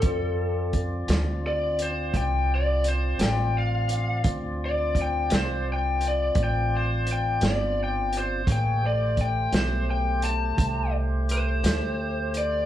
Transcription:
<<
  \new Staff \with { instrumentName = "Lead electric guitar" } { \time 12/8 \key d \dorian \tempo 4. = 57 a'4 r4 d''8 c''8 g''8 d''8 c''8 g''8 f''4 | r8 d''8 g''8 c''8 g''8 d''8 g''8 c''8 g''8 d''8 g''8 c''8 | g''8 d''8 g''8 c''8 g''8 a''4 r8 c''4. d''8 | }
  \new Staff \with { instrumentName = "Tonewheel organ" } { \time 12/8 \key d \dorian <c' f' d''>1. | <c' f' d''>1. | <bes gis' cis''>8 <a g' c''>1~ <a g' c''>4. | }
  \new Staff \with { instrumentName = "Upright bass" } { \clef bass \time 12/8 \key d \dorian f,4. d,4. c,4. a,,4. | d,4. c,4. a,,4. g,,4. | a,,4. b,,4. c,4. d,4. | }
  \new DrumStaff \with { instrumentName = "Drums" } \drummode { \time 12/8 <hh bd>4 <hh bd>8 <hh sn>4 hh8 <hh bd>4 hh8 <hh sn>4 hh8 | <hh bd>4 <hh bd>8 <hh sn>4 hh8 <hh bd>4 hh8 <hh sn>4 hh8 | <hh bd>4 <hh bd>8 <hh sn>4 hh8 <hh bd>4 hh8 <hh sn>4 hh8 | }
>>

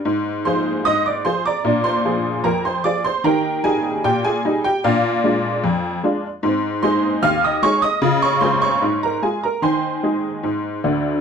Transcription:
\new Staff \with { instrumentName = "Honky-tonk piano" } { \time 2/4 \key bes \mixolydian \tempo 4 = 75 << { r8 <c'' c'''>8 <ees'' ees'''>16 <d'' d'''>16 <c'' c'''>16 <d'' bes'' d'''>16~ | <d'' bes'' d'''>16 <c'' c'''>8. <bes' bes''>16 <c'' c'''>16 <d'' d'''>16 <c'' c'''>16 | <bes' g'' bes''>8 <aes' aes''>8 <g' g''>16 <aes' aes''>8 <g' g''>16 | <f' d'' f''>4. r8 |
\key aes \major r8 <c'' c'''>8 <f'' f'''>16 <ees'' ees'''>16 <des'' des'''>16 <ees'' ees'''>16~ | <ees'' ees'''>16 <des'' des'''>16 <c'' c'''>16 <des'' des'''>8 <bes' bes''>16 <aes' aes''>16 <bes' bes''>16 | <c'' aes'' c'''>2 | } \\ { aes,8 <f f' aes'>8 aes,8 <f f' aes'>8 | <bes, d'>8 <f f' aes'>8 f,8 <f f' aes'>8 | <ees g'>8 <g ees' g'>8 bes,8 <g ees' g'>8 | <bes, d'>8 <aes d' f'>8 f,8 <aes d' f'>8 |
<aes, c'>8 <aes ees' aes'>8 ees,8 <aes ees' aes'>8 | <des f'>8 <aes f' aes'>8 aes,8 <aes f'>8 | ees8 <aes ees' aes'>8 aes,8 <d, d>8 | } >> }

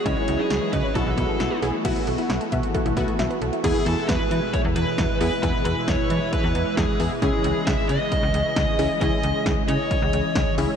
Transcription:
<<
  \new Staff \with { instrumentName = "Lead electric guitar" } { \time 4/4 \key e \major \tempo 4 = 134 cis''8. gis'8. b'8 a'4. r8 | r1 | gis'8 a'8 b'4 cis''8 b'4 b'8 | b'8 b'8 cis''4 b'4 gis'8. r16 |
gis'4 e''8 dis''2~ dis''8 | dis''4 r8 cis''2 r8 | }
  \new Staff \with { instrumentName = "Synth arpeggio sound" } { \time 4/4 \key e \major dis''16 cis''16 e'16 dis'16 cis'16 e16 dis''16 cis''16 a'16 r16 b16 a16 e''16 b'16 a'16 r16 | e''16 b'16 a'16 e'16 b16 a16 e''16 r16 a'16 e'16 b16 a16 e''16 b'16 a'16 e'16 | r1 | r1 |
r1 | r1 | }
  \new Staff \with { instrumentName = "Analog polysynth" } { \time 4/4 \key e \major <cis' e' gis'>4 r4 <b e' fis'>4 r8 <b e' gis'>8 | <b e' fis'>4 r4. <b e' fis'>4 r8 | <b e' gis'>4 r2 r8 <b e' gis'>8 | <b e' gis'>4 r2 r8 <b e' gis'>8 |
<cis' e' gis'>4 r2 r8 <cis' e' gis'>8 | <cis' e' gis'>4 r2 r8 <cis' e' gis'>8 | }
  \new Staff \with { instrumentName = "Analog synth pad" } { \time 4/4 \key e \major << { <fis e'>2 <e fis'>2 | <e fis'>1 | <b, e'>1~ | <b, e'>1 |
<cis dis''>1~ | <cis dis''>1 | } \\ { <gis cis'>2 <a b>2 | <a b>1 | <e gis>1~ | <e gis>1~ |
<e gis>1~ | <e gis>1 | } >> }
  \new Staff \with { instrumentName = "FM bass" } { \clef bass \time 4/4 \key e \major cis,16 r16 cis,16 r16 cis,16 r16 cis16 r16 b,,16 b,,16 b,,16 r16 b,,16 r16 b,,16 r16 | b,,16 r16 b,,16 r16 b,,16 r16 b,16 r8 b,,16 b,,16 r16 b,,16 r16 b,,16 r16 | e,16 r16 e,16 r16 e,16 r16 e16 r8 e,16 e,16 r16 e,16 r16 e,16 r16 | e,16 r16 e,16 r16 e,16 r16 e16 r8 e,16 e,16 r16 e,16 r16 e,16 r16 |
cis,16 r16 cis,16 r16 cis,16 r16 cis16 r8 cis,16 cis,16 r16 cis,16 r16 cis,16 r16 | cis,16 r16 cis,16 r16 cis,16 r16 cis16 r8 cis,16 cis,16 r16 cis,16 r16 cis,16 r16 | }
  \new DrumStaff \with { instrumentName = "Drums" } \drummode { \time 4/4 <hh bd>8 hh8 <hh sn>8 <hh bd>8 <hh bd>8 <hh bd>8 <hh sn>8 hh8 | <cymc hh bd>16 hh16 hh16 hh16 <hh sn>16 hh16 <hh bd>16 hh16 <hh bd>16 hh16 <hh bd>16 hh16 <hh sn>16 hh16 hh16 hh16 | <cymc hh bd>8 hh8 <hh bd sn>8 hh8 <hh bd>8 hh8 <hh bd sn>8 hho8 | <hh bd>8 hh8 <hh bd sn>8 hh8 <hh bd>8 hh8 <hh bd sn>8 hho8 |
<hh bd>8 hh8 <hh bd sn>8 hh8 <hh bd>8 hh8 <hh bd sn>8 hho8 | <hh bd>8 hh8 <hh bd sn>8 hh8 <hh bd>8 hh8 <hh bd sn>8 hho8 | }
>>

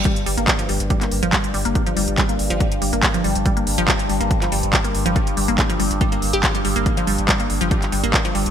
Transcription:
<<
  \new Staff \with { instrumentName = "Synth arpeggio sound" } { \clef bass \time 4/4 \key g \minor \tempo 4 = 141 g16 r16 g16 bes16 r16 f16 g16 r16 g16 bes16 r16 f16 g16 r16 g16 bes16 | r16 f16 g16 r16 g16 bes16 r16 f16 g16 r16 g16 bes16 r16 f16 g16 r16 | g16 bes16 r16 f16 g16 r16 g16 bes16 r16 f16 g16 r16 g16 bes16 r16 f16 | g16 r16 g16 bes16 r16 f16 g16 r16 g16 bes16 r16 g'16 f16 g16 g16 bes16 |
r16 f16 g16 r16 g16 bes16 r16 f16 g16 r16 g16 bes16 r16 f16 g16 r16 | }
  \new Staff \with { instrumentName = "Synth drone" } { \clef bass \time 4/4 \key g \minor g,1~ | g,1~ | g,1~ | g,1~ |
g,1 | }
  \new Staff \with { instrumentName = "Sub bass" } { \clef bass \time 4/4 \key g \minor r8 g,,16 g,,16 r8 g,,16 g,,16 r8 g,,16 g,,16 r8 g,,16 g,,16 | r8 g,,16 g,,16 r8 g,,16 g,,16 r8 g,,16 g,,16 r8 g,,16 g,,16 | r8 g,,16 g,,16 r8 g,,16 g,,16 r8 g,,16 g,,16 r8 g,,16 g,,16 | r8 g,,16 g,,16 r8 g,,16 g,,16 r8 g,,16 g,,16 r8 g,,16 g,,16 |
r8 g,,16 g,,16 r8 g,,16 g,,16 r8 g,,16 g,,16 r8 g,,16 g,,16 | }
  \new DrumStaff \with { instrumentName = "Drums" } \drummode { \time 4/4 <hh bd>16 hh16 hho16 hh16 <hc hh bd>16 hh16 hho16 hh16 <hh bd>16 <hc hh>16 hho16 hh16 <hc hh bd>16 hh16 hho16 hh16 | <hh bd>16 hh16 hho16 hh16 <hc hh bd>16 hh16 hho16 hh16 <hh bd>16 hh16 hho16 hh16 <hc hh bd>16 hh16 hho16 hh16 | <hh bd>16 hh16 hho16 hh16 <hc hh bd>16 hh16 hho16 hh16 <hh bd>16 <hc hh>16 hho16 hh16 <hc hh bd>16 hh16 hho16 hh16 | <hh bd>16 hh16 hho16 hh16 <hc hh bd>16 hh16 hho16 hh16 <hh bd>16 hh16 hho16 hh16 <hc hh bd>16 hh16 hho16 hh16 |
<hh bd>16 hh16 hho16 hh16 <hc hh bd>16 hh16 hho16 hh16 <hh bd>16 <hc hh>16 hho16 hh16 <hc hh bd>16 hh16 hho16 hh16 | }
>>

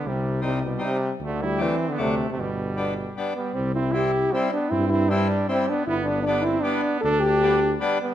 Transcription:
<<
  \new Staff \with { instrumentName = "French horn" } { \time 3/4 \key g \major \tempo 4 = 154 c4 c8 b,8 c8. r16 | d8 g8 e8. d16 c8. c16 | b,2 r8 b8 | \key c \major c'8 e'8 g'4 c'8 d'8 |
e'8 e'8 d'4 c'8 d'8 | e'16. e'32 d'8 d'8 e'8 d'4 | a'8 g'4~ g'16. r8 r32 b8 | }
  \new Staff \with { instrumentName = "Accordion" } { \time 3/4 \key g \major r4 <g c' ees'>8 r8 <g c' ees'>8 r8 | r4 <g a d'>8 r8 <fis a d'>8 r8 | r4 <g b d'>8 r8 <g b d'>8 r8 | \key c \major r4 <g c' e'>8 r8 <g c' e'>8 r8 |
r4 <g c' e'>8 r8 <g c' e'>8 r8 | r4 <g b d'>8 r8 <g b d'>8 r8 | r4 <g b d'>8 r8 <g b d'>8 r8 | }
  \new Staff \with { instrumentName = "Trumpet" } { \time 3/4 \key g \major g4 g8 g8 g8. r16 | a8 e'8 c'8. b16 a8. a16 | g2 r8 g8 | \key c \major g8 c'8 e'4 g8 b8 |
c'8 c'8 g4 g8 b8 | b16. c'32 b8 b8 c'8 b4 | d'8 d'4~ d'16. r8 r32 g8 | }
  \new Staff \with { instrumentName = "Tuba" } { \clef bass \time 3/4 \key g \major c,2. | d,2 d,4 | g,,2. | \key c \major c,2. |
g,2. | g,,2. | d,2. | }
>>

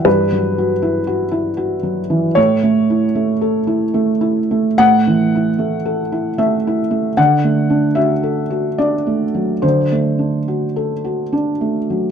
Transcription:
<<
  \new Staff \with { instrumentName = "Felt piano" } { \time 3/4 \key d \mixolydian \tempo 4 = 75 b'2~ b'8 r8 | cis''2. | fis''2 e''4 | fis''4 e''4 d''4 |
c''2 r4 | }
  \new Staff \with { instrumentName = "Felt piano" } { \time 3/4 \key d \mixolydian \tuplet 3/2 { <g, e>8 fis8 fis'8 e'8 fis'8 e'8 fis'8 fis8 e8 } | \tuplet 3/2 { a,8 a8 e'8 a8 a'8 e'8 a8 e'8 a8 } | \tuplet 3/2 { a,8 e8 e'8 a8 a'8 e'8 a8 e'8 a8 } | \tuplet 3/2 { d8 a8 d'8 fis'8 a'8 fis'8 d'8 a8 fis8 } |
\tuplet 3/2 { d8 a8 d'8 fis'8 a'8 fis'8 d'8 a8 fis8 } | }
>>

